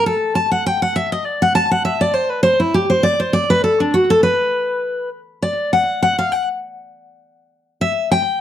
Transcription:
0.06 A4
0.35 A5
0.52 F#5
0.66 G5
0.82 F#5
0.96 E5
1.12 D#5
1.26 D5
1.42 F#5
1.55 A5
1.71 F#5
1.85 E5
2.01 D5
2.14 C5
2.30 B4
2.43 C5
2.60 E4
2.74 G4
2.90 C5
3.03 D5
3.20 C5
3.33 D5
3.50 B4
3.64 A4
3.80 D4
3.94 F#4
4.10 A4
4.23 B4
5.42 D5
5.73 F#5
6.03 F#5
6.19 F5
6.32 F#5
7.81 E5
8.11 G5

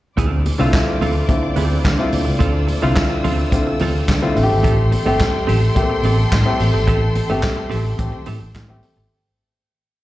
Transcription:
0.17 D2 C4 F4 A4 C5 D5 D6, kick, closed hi-hat, muted conga
0.32 muted clean electric guitar stroke
0.46 muted clean electric guitar stroke, open hi-hat, muted conga
0.58 C2 D3 A3 C4 E4 F4 A4
0.73 kick, snare, clap, closed hi-hat, high conga
0.88 muted clean electric guitar stroke
1.01 D2 C4 F4 A4, open hi-hat, low conga
1.15 muted clean electric guitar stroke
1.28 D3 A3 C4 E4 F4, muted clean electric guitar stroke, kick, closed hi-hat, muted conga
1.43 muted clean electric guitar stroke
1.56 D2 C4 F4 A4, open hi-hat
1.70 muted clean electric guitar stroke
1.84 D3, muted clean electric guitar stroke, kick, snare, clap, closed hi-hat, high conga
1.97 D3 A3 C4 E4 F4, muted clean electric guitar stroke, high conga
2.12 D2, open hi-hat, high conga
2.25 C#2, muted clean electric guitar stroke
2.39 D2 C4 F4 A4 E6, kick, closed hi-hat, muted conga
2.54 muted clean electric guitar stroke
2.67 muted clean electric guitar stroke, open hi-hat, muted conga
2.82 C2 D3 A3 C4 E4 F4 A4
2.96 kick, snare, clap, closed hi-hat, high conga
3.10 muted clean electric guitar stroke
3.24 D2 C4 F4 A4, open hi-hat, low conga
3.39 muted clean electric guitar stroke
3.52 D3 A3 C4 E4 F4, muted clean electric guitar stroke, kick, closed hi-hat, muted conga
3.67 muted clean electric guitar stroke
3.79 D2 C4 F4 A4, open hi-hat, low conga
3.95 muted clean electric guitar stroke
4.08 D3, muted clean electric guitar stroke, kick, snare, clap, closed hi-hat, high conga
4.22 D3 A3 C4 E4 F4, muted clean electric guitar stroke, high conga
4.35 A1 A3 C4 F4 A4 G5 C6, open hi-hat, high conga
4.43 G4
4.50 G#1, muted clean electric guitar stroke
4.63 A1 C4 G4 A4, kick, closed hi-hat
4.77 muted clean electric guitar stroke
4.92 muted clean electric guitar stroke, open hi-hat, muted conga
5.06 G1 A3 C4 G4 A4
5.20 kick, snare, clap, closed hi-hat, high conga
5.34 muted clean electric guitar stroke
5.47 A1 C4 G4 A4, open hi-hat, low conga
5.61 muted clean electric guitar stroke
5.75 A3 A#3 G4, muted clean electric guitar stroke, kick, closed hi-hat, muted conga
5.83 C4
5.90 muted clean electric guitar stroke
6.03 A1 C4 G4 A4, open hi-hat
6.18 muted clean electric guitar stroke
6.32 A2, muted clean electric guitar stroke, kick, snare, clap, closed hi-hat, high conga
6.46 A3 C4 G4, muted clean electric guitar stroke, high conga
6.60 A1, open hi-hat, high conga
6.74 G#1, muted clean electric guitar stroke
6.87 A1 C4 G4 A4, kick, closed hi-hat, muted conga
7.02 muted clean electric guitar stroke
7.15 muted clean electric guitar stroke, open hi-hat, muted conga
7.30 G1 A3 C4 G4 A4
7.43 kick, snare, clap, closed hi-hat, high conga
7.57 muted clean electric guitar stroke
7.70 A1 C4 G4 A4, open hi-hat, low conga
7.84 muted clean electric guitar stroke
7.98 A1 A3 C4 G4, muted clean electric guitar stroke, kick, closed hi-hat, muted conga
8.12 muted clean electric guitar stroke
8.26 A2 C4 G4 A4, open hi-hat, low conga
8.41 A1, muted clean electric guitar stroke
8.54 A2, muted clean electric guitar stroke, kick, snare, clap, closed hi-hat, high conga
8.68 A1 A3 C4 G4, muted clean electric guitar stroke, high conga
8.83 open hi-hat, high conga
8.96 G#1, muted clean electric guitar stroke

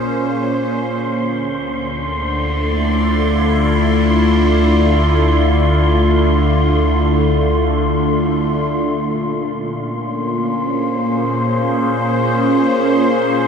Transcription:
Already playing: A#1 A#2 A#3 C#4 G#4 C5 C6
0.84 D2 D3
1.27 A3
1.53 D5
1.93 E4
2.11 F4
8.70 A#2 C6
8.98 A#3
9.02 C#4
10.08 C5
10.14 G#4

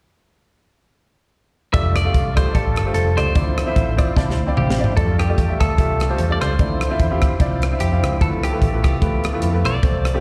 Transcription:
1.73 F1 G3 A3 D4 F4 G4 A4 D5 E5, kick, closed hi-hat
1.96 D5, cross-stick, closed hi-hat
2.04 A3 F4 G4 F5
2.14 C2, kick, closed hi-hat
2.36 A3 F4 G4 C5 D5, kick, cross-stick, closed hi-hat
2.54 A1 A3 F4 G4 A4 D5, kick, closed hi-hat
2.76 G1, cross-stick, closed hi-hat
2.85 A3 F4 G4 C5
2.94 F1 A4, closed hi-hat
3.16 C#2 A3 F4 G4 C5 D5, cross-stick, closed hi-hat
3.35 D2 D3 F3 C4 D4 E4 F4 C5 D5, kick, closed hi-hat
3.58 cross-stick, closed hi-hat
3.66 C4 E4 F4 E5
3.76 A1, kick, closed hi-hat
3.97 C4 E4 F4 D5 C6, kick, cross-stick, closed hi-hat
4.16 C2 C4 E4 F4 D5 A5, kick, snare
4.30 snare
4.39 D2
4.46 C4 E4 F4 D5 G5
4.57 A1 G4 F5, mid tom
4.70 snare
4.79 C4 E4 F4 D5 E5
4.84 floor tom
4.97 F2 G3 A3 D4 F4 G4 A4 D5, kick, closed hi-hat
5.19 G4, cross-stick, closed hi-hat
5.29 A3 F4 G4 D5
5.38 E2, kick, closed hi-hat
5.48 A3 F4 G4 E5
5.60 D2 A4, kick, cross-stick, closed hi-hat
5.78 C2 A3 F4 G4 E5, kick, closed hi-hat
6.00 cross-stick, closed hi-hat
6.09 A3 F4 G4 C5
6.18 E2, closed hi-hat
6.29 A3 F4 G4 D5
6.41 C#2 C5, cross-stick, closed hi-hat
6.59 D2 D3 F3 C4 D4 E4 F4 C5 D5, kick, closed hi-hat
6.81 cross-stick, closed hi-hat
6.90 C4 E4 F4 E5
7.00 E2, kick, closed hi-hat
7.10 C4 E4 F4 G4
7.22 D2, kick, cross-stick, closed hi-hat
7.40 C2 C4 E4 F4 D5, kick, closed hi-hat
7.62 cross-stick, closed hi-hat
7.72 C4 E4 F4 E5
7.80 F2 G4, closed hi-hat
7.92 C4 E4 F4 F5
8.02 C#2, cross-stick, closed hi-hat
8.20 D2 D3 F3 A3 B3 E4 F4 A4 B4, kick, closed hi-hat
8.44 G4, cross-stick, closed hi-hat
8.53 A3 E4 F4 B4
8.62 A1, kick, closed hi-hat
8.73 A3 E4 F4 B4
8.84 C2 G4, kick, cross-stick, closed hi-hat
9.01 D2 A3 E4 F4 B4, kick, closed hi-hat
9.24 cross-stick, closed hi-hat
9.33 A3 E4 F4 B4
9.42 F2, closed hi-hat
9.53 A3 E4 F4 B4
9.65 B1 D5, cross-stick, closed hi-hat
9.82 C2 C3 F3 A3 C4 F4 G4 C5, kick, closed hi-hat
9.88 A4
10.05 cross-stick, closed hi-hat
10.14 A3 C4 F4 G4

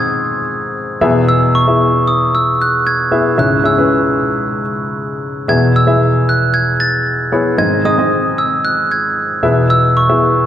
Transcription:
Already playing: G#2 D#3 C4 D#4 G#4 C5 D#5 F#5 G#6
1.01 E2 B2 B3 E4 G#4 E5
1.29 E6
1.55 C#6
1.67 B3 E4 G#4 E5
2.07 D#6
2.35 E6
2.62 F#6
2.87 G#6
3.11 B3 E4 G#4 E5
3.38 C#2 G#2 C#4 E4 G#4 E5 F#6
3.63 C#4 E4 G#4 E5 E6
3.78 C#4 E4 G#4 B4
5.48 E2 B2 B3 E4 G#4 E5 G#6
5.76 E6
5.87 B3 E4 G#4 E5
6.29 F#6
6.54 G#6
6.80 A6
7.32 B3 E4 G#4 C#5
7.58 G#2 D#3 C4 D#4 G#4 D#5 G#6
7.85 C4 D#4 G#4 D#5 D#6
7.98 C4 D#4 G#4 D#5
8.38 E6
8.65 F#6
8.92 G#6
9.43 E2 B2 B3 E4 G#4 E5
9.70 E6
9.97 C#6
10.09 B3 E4 G#4 E5

